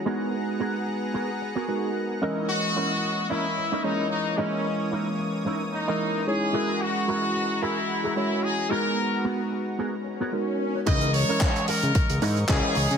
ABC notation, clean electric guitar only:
X:1
M:4/4
L:1/16
Q:"Swing 16ths" 1/4=111
K:C#dor
V:1 name="Clean electric guitar"
[B,FGA]2 z2 [B,FGA] z3 [B,FGA] z2 [B,FGA]3 z2 | [CDEA]2 z2 [CDEA] z3 [CDEA] z2 [CDEA]3 z2 | [CDEA]2 z2 [CDEA] z3 [CDEA] z2 [CDEA]3 z2 | [EFGA]2 z2 [EFGA] z3 [EFGA] z2 [EFGA]3 z2 |
[B,FGA]2 z2 [B,FGA] z3 [B,FGA] z2 [B,FGA] z4 | [CDEA]2 z [CDEA] z6 [CDEA] z [CDEA]2 z2 |]